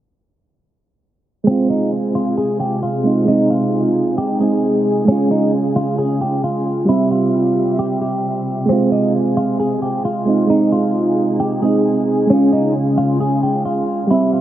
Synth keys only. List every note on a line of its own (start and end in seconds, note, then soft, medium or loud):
1.44 3.00 G#3 medium
1.44 3.02 C4 medium
1.51 3.04 F4 medium
3.03 3.23 G#3 soft
3.03 3.27 C4 soft
3.03 3.29 D#4 medium
3.25 4.37 G#3 medium
3.25 4.38 C4 medium
3.31 4.40 D#4 medium
4.39 5.04 G#3 soft
4.39 5.09 C4 soft
4.39 5.09 D#4 medium
5.05 6.83 G#3 medium
5.05 6.85 C#4 medium
5.12 6.87 F4 medium
6.85 8.64 G3 medium
6.85 8.65 C4 medium
6.92 8.67 E5 medium
8.66 10.22 G#3 medium
8.66 10.24 C4 medium
8.72 10.26 F4 medium
10.25 10.46 G#3 soft
10.25 10.49 C4 soft
10.25 10.51 D#4 medium
10.47 11.59 G#3 medium
10.47 11.60 C4 medium
10.54 11.62 D#4 medium
11.61 12.25 G#3 soft
11.61 12.30 C4 soft
11.61 12.31 D#4 medium
12.27 14.05 G#3 medium
12.27 14.07 C#4 medium
12.33 14.09 F4 medium
14.07 14.41 G3 medium
14.07 14.41 C4 medium
14.14 14.41 E5 medium